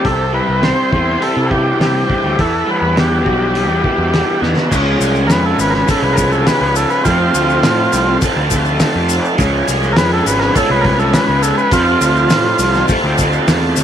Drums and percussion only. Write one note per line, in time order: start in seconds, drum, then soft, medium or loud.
0.05 kick medium
0.05 open hi-hat soft
0.63 snare loud
0.63 open hi-hat soft
0.93 kick medium
1.22 open hi-hat soft
1.51 kick medium
1.81 snare loud
1.81 open hi-hat soft
2.10 kick medium
2.39 kick loud
2.39 open hi-hat soft
2.97 snare loud
2.97 open hi-hat soft
3.26 kick medium
3.55 open hi-hat medium
3.84 kick medium
4.14 snare loud
4.14 open hi-hat medium
4.43 snare medium
4.57 snare medium
4.72 kick loud
4.72 crash medium
4.72 shaker medium
5.01 open hi-hat medium
5.01 shaker medium
5.15 shaker soft
5.30 snare loud
5.30 open hi-hat medium
5.30 shaker medium
5.59 open hi-hat medium
5.59 shaker medium
5.74 snare soft
5.88 kick loud
5.88 open hi-hat medium
5.88 shaker medium
6.17 kick medium
6.17 open hi-hat medium
6.17 shaker medium
6.32 shaker soft
6.47 snare loud
6.47 open hi-hat medium
6.47 shaker medium
6.76 open hi-hat medium
6.76 shaker loud
6.90 shaker soft
7.05 kick loud
7.05 open hi-hat medium
7.05 shaker medium
7.34 open hi-hat soft
7.34 shaker medium
7.50 shaker soft
7.63 snare loud
7.63 open hi-hat medium
7.63 shaker medium
7.93 open hi-hat medium
7.93 shaker loud
8.21 kick loud
8.21 open hi-hat medium
8.21 shaker medium
8.51 kick medium
8.51 open hi-hat medium
8.51 shaker medium
8.65 shaker soft
8.80 snare loud
8.80 open hi-hat medium
8.80 shaker medium
9.09 open hi-hat medium
9.09 shaker loud
9.25 shaker soft
9.38 kick loud
9.38 open hi-hat medium
9.38 shaker medium
9.68 open hi-hat medium
9.68 shaker medium
9.83 shaker soft
9.96 snare loud
9.96 open hi-hat medium
9.96 shaker medium
10.26 open hi-hat medium
10.26 shaker loud
10.41 snare soft
10.56 kick loud
10.56 open hi-hat medium
10.56 shaker medium
10.84 kick medium
10.84 open hi-hat soft
10.99 shaker soft
11.13 snare loud
11.13 open hi-hat medium
11.13 shaker medium
11.43 open hi-hat medium
11.43 shaker loud
11.58 shaker soft
11.71 kick loud
11.71 open hi-hat medium
11.71 shaker medium
12.01 open hi-hat medium
12.01 shaker medium
12.16 shaker soft
12.30 snare loud
12.30 open hi-hat medium
12.30 shaker medium
12.59 open hi-hat medium
12.59 shaker loud
12.74 snare soft
12.74 shaker soft
12.88 kick loud
12.88 open hi-hat medium
12.88 shaker medium
13.18 kick medium
13.18 open hi-hat medium
13.18 shaker medium
13.33 shaker soft
13.48 snare loud
13.48 open hi-hat medium
13.48 shaker medium
13.76 open hi-hat medium
13.76 shaker loud